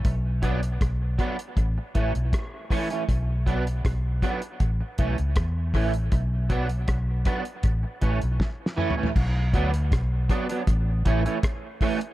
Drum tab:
CC |------------------------------------------------|------------------------------------------------|------------------------------------------------|x-----------------------------------------------|
HH |x-----x--x--x-----x--x--x-----x--x--x-----o--x--|x-----x--x--x-----x--x--x-----x--x--x-----o--x--|x-----x--x--x-----x--x--x-----x--x--------------|------x--x--x-----x--x--x-----x--x--x-----o--x--|
SD |------------r-----------------------r-----------|------------r-----------------------r-----------|------------r-----------------------o---o-------|------------r-----------------------r-----------|
T2 |------------------------------------------------|------------------------------------------------|------------------------------------------o-----|------------------------------------------------|
FT |------------------------------------------------|------------------------------------------------|--------------------------------------------o-o-|------------------------------------------------|
BD |o-----o-----o-----o-----o-----o-----o-----o-----|o-----o-----o-----o-----o-----o-----o-----o-----|o-----o-----o-----o-----o-----o-----o-----------|o-----o-----o-----o-----o-----o-----o-----o-----|